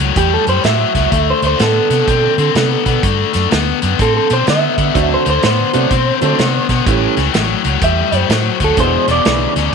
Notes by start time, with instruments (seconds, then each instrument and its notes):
0.00 fingered electric bass C#2, overdriven electric guitar A2 F#3
0.16 fingered electric bass E2, overdriven electric guitar A2 G3, clean electric guitar G4, kick, closed hi-hat
0.34 clean electric guitar A4
0.47 fingered electric bass F#2, overdriven electric guitar A2 G3, clean electric guitar C5, closed hi-hat
0.64 fingered electric bass A2, overdriven electric guitar A2 F#3, clean electric guitar E5, snare, closed hi-hat
0.95 fingered electric bass C#2, overdriven electric guitar A2 F#3, kick, snare, closed hi-hat
1.12 fingered electric bass D2, overdriven electric guitar D3 A3, kick, closed hi-hat
1.30 clean electric guitar C5
1.42 fingered electric bass D2, overdriven electric guitar D3 A3, closed hi-hat
1.47 clean electric guitar C5
1.59 fingered electric bass A2, overdriven electric guitar D3 B3, clean electric guitar A4, snare, closed hi-hat
1.90 fingered electric bass C3, overdriven electric guitar D3 B3, snare, closed hi-hat
2.07 fingered electric bass B2, overdriven electric guitar D3 C4, kick, closed hi-hat
2.38 fingered electric bass D3, overdriven electric guitar D3 C4, closed hi-hat
2.55 fingered electric bass C3, overdriven electric guitar D3 B3, snare, closed hi-hat
2.85 fingered electric bass B2, overdriven electric guitar D3 B3, kick, closed hi-hat
3.03 fingered electric bass G2, overdriven electric guitar D3 A3, kick, closed hi-hat
3.33 fingered electric bass F#2, overdriven electric guitar D3 A3, snare, closed hi-hat
3.51 fingered electric bass D2, overdriven electric guitar D3 B3, snare, closed hi-hat
3.82 fingered electric bass F#2, overdriven electric guitar D3 B3, closed hi-hat
3.99 fingered electric bass A2, overdriven electric guitar D3 C4, clean electric guitar A4, kick, closed hi-hat
4.17 clean electric guitar A4
4.30 fingered electric bass B2, overdriven electric guitar D3 C4, clean electric guitar C5, closed hi-hat
4.47 overdriven electric guitar D3 B3, fingered electric bass D3, clean electric guitar E5, snare, closed hi-hat
4.78 fingered electric bass D3, overdriven electric guitar D3 B3, kick, closed hi-hat
4.94 fingered electric bass D2, overdriven electric guitar D3 A3, upright piano F#3 A3 C4 D4 F#4, kick, closed hi-hat
5.14 clean electric guitar C5
5.25 fingered electric bass D2, overdriven electric guitar D3 A3, closed hi-hat
5.30 clean electric guitar C5
5.42 fingered electric bass A2, overdriven electric guitar D3 B3, clean electric guitar C5, snare, closed hi-hat
5.73 fingered electric bass C3, overdriven electric guitar D3 B3, upright piano F#3 A3 C4 D4 F#4, closed hi-hat
5.91 fingered electric bass B2, overdriven electric guitar D3 C4, kick, closed hi-hat
6.21 overdriven electric guitar D3 C4, fingered electric bass D3, upright piano F#3 A3 C4 D4 A4, closed hi-hat
6.39 fingered electric bass C3, overdriven electric guitar D3 B3, snare, closed hi-hat
6.69 fingered electric bass B2, overdriven electric guitar D3 B3, kick, snare, closed hi-hat
6.86 fingered electric bass A1, overdriven electric guitar A2 E3, upright piano G3 A3 C#4 E4 G4, kick, closed hi-hat
7.17 fingered electric bass C#2, overdriven electric guitar A2 E3, snare, closed hi-hat
7.33 fingered electric bass A1, overdriven electric guitar A2 F#3, snare, closed hi-hat
7.64 fingered electric bass C#2, overdriven electric guitar A2 F#3, closed hi-hat
7.81 fingered electric bass E2, overdriven electric guitar A2 G3, clean electric guitar E5, kick, closed hi-hat
8.12 fingered electric bass F#2, overdriven electric guitar A2 G3, closed hi-hat
8.16 clean electric guitar C5
8.29 overdriven electric guitar A2 F#3, fingered electric bass A2, snare, closed hi-hat
8.60 fingered electric bass D2, overdriven electric guitar A2 F#3, kick, closed hi-hat
8.64 clean electric guitar A4
8.77 fingered electric bass E1, overdriven electric guitar E2 B2, upright piano G#3 B3 D4 E4 G#4, clean electric guitar C5, kick, closed hi-hat
9.08 fingered electric bass E1, overdriven electric guitar E2 B2, clean electric guitar D5, snare, closed hi-hat
9.25 fingered electric bass B1, overdriven electric guitar E2 C#3, upright piano G#3 B3 D4 E4 B4, snare, closed hi-hat
9.56 fingered electric bass D2, overdriven electric guitar E2 C#3, snare, closed hi-hat